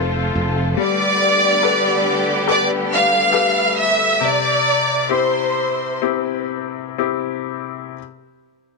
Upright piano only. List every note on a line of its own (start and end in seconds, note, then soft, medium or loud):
0.00 0.74 F3 medium
0.00 0.80 F4 soft
0.00 0.80 A4 soft
0.00 0.80 C5 medium
0.77 4.16 G3 medium
1.62 2.44 G4 soft
1.62 2.45 A4 soft
1.62 2.45 B4 medium
2.47 3.30 G4 soft
2.47 3.30 A4 soft
2.47 3.30 B4 medium
3.32 4.17 G4 soft
3.32 4.18 A4 soft
3.32 4.18 B4 medium
4.20 7.94 C3 medium
5.09 5.99 C4 soft
5.09 5.99 E4 soft
5.09 6.00 G4 medium
6.02 6.95 C4 soft
6.02 6.95 E4 soft
6.02 6.96 G4 soft
6.98 7.95 C4 soft
6.98 7.95 E4 soft
6.98 7.95 G4 soft